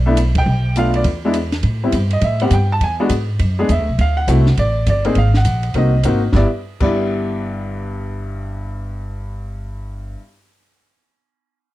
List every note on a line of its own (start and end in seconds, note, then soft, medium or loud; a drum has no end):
0.00 0.43 B1 medium
0.06 0.16 A3 medium
0.06 0.16 B3 medium
0.06 0.16 D4 medium
0.06 0.17 E4 medium
0.17 hi-hat pedal medium
0.17 ride medium
0.35 0.74 G5 medium
0.35 kick medium
0.35 ride medium
0.46 1.02 B1 medium
0.76 1.06 A3 soft
0.76 1.06 B3 soft
0.76 1.06 D4 soft
0.76 1.06 F4 soft
0.76 0.95 F5 medium
0.76 hi-hat pedal medium
0.76 ride medium
0.94 1.02 D5 medium
0.94 ride soft
1.04 1.60 E2 medium
1.04 kick soft
1.04 ride medium
1.25 1.34 G#3 medium
1.25 1.34 B3 medium
1.25 1.34 D4 medium
1.25 1.34 E4 medium
1.34 hi-hat pedal soft
1.34 ride medium
1.52 snare soft
1.52 ride soft
1.63 1.92 A2 medium
1.63 kick soft
1.63 ride medium
1.83 1.93 G3 soft
1.83 1.93 B3 soft
1.83 1.93 C4 soft
1.83 1.93 E4 medium
1.92 2.21 G2 medium
1.92 kick soft
1.92 hi-hat pedal medium
1.92 ride medium
2.11 2.23 D#5 medium
2.11 ride soft
2.21 2.50 A2 medium
2.21 2.41 E5 medium
2.21 kick soft
2.21 ride medium
2.40 2.51 G3 medium
2.40 2.51 B3 medium
2.40 2.51 C4 medium
2.40 2.51 G4 medium
2.40 2.52 F#5 medium
2.40 ride soft
2.51 2.80 G2 medium
2.51 2.71 G5 medium
2.51 kick soft
2.51 hi-hat pedal medium
2.51 ride medium
2.72 2.82 A5 medium
2.80 3.09 E2 medium
2.80 2.94 G#5 medium
2.80 kick soft
2.80 ride soft
3.00 3.10 G#3 medium
3.00 3.10 B3 medium
3.00 3.10 D4 medium
3.00 3.10 F#4 medium
3.09 3.38 G#2 medium
3.09 kick soft
3.09 hi-hat pedal medium
3.09 ride medium
3.39 3.68 F#2 medium
3.39 kick soft
3.39 ride medium
3.59 3.68 G#3 medium
3.59 3.69 B3 soft
3.59 3.68 D4 medium
3.59 3.69 G#4 medium
3.69 3.79 E2 medium
3.69 3.98 E5 medium
3.69 kick soft
3.69 hi-hat pedal soft
3.69 ride medium
3.79 3.88 D2 soft
3.89 3.98 B1 medium
3.98 4.27 D2 medium
3.98 4.18 F5 medium
3.98 kick soft
3.98 ride soft
4.17 4.54 F#5 medium
4.27 4.56 C2 medium
4.27 4.45 A3 medium
4.27 4.44 C4 medium
4.27 4.45 E4 medium
4.27 4.45 F#4 medium
4.27 kick soft
4.27 hi-hat pedal medium
4.27 ride medium
4.46 snare soft
4.57 4.86 A1 medium
4.57 4.88 D5 medium
4.57 kick soft
4.57 ride medium
4.86 5.15 G1 medium
4.86 5.15 D5 medium
4.86 kick soft
4.86 hi-hat pedal soft
4.86 ride medium
5.05 5.15 A#3 medium
5.05 5.15 C4 medium
5.05 5.15 D#4 soft
5.05 5.15 G#4 medium
5.05 ride soft
5.15 5.44 G#1 medium
5.15 5.35 F5 medium
5.15 kick soft
5.15 ride soft
5.34 5.73 F#5 medium
5.34 snare soft
5.45 5.74 A#1 medium
5.45 kick soft
5.45 hi-hat pedal medium
5.45 ride medium
5.63 ride soft
5.74 6.03 C2 medium
5.74 5.91 A#3 soft
5.74 5.92 C4 soft
5.74 5.92 D#4 soft
5.74 5.92 F#4 soft
5.74 6.21 D#5 medium
5.74 kick soft
5.74 ride soft
6.03 6.32 G#1 medium
6.03 6.21 A#3 medium
6.03 6.21 C4 soft
6.03 6.21 D#4 soft
6.03 6.21 F#4 medium
6.03 kick soft
6.03 hi-hat pedal soft
6.03 ride medium
6.33 6.43 G1 medium
6.33 6.44 G2 medium
6.33 6.45 G3 medium
6.33 6.45 B3 medium
6.33 6.46 E4 medium
6.33 6.45 D5 medium
6.33 kick soft
6.33 snare medium
6.80 10.14 G1 medium
6.80 10.18 G2 medium
6.80 10.18 G3 medium
6.80 10.19 B3 soft
6.80 10.19 E4 medium
6.80 10.15 D5 medium
6.80 kick soft
6.80 crash medium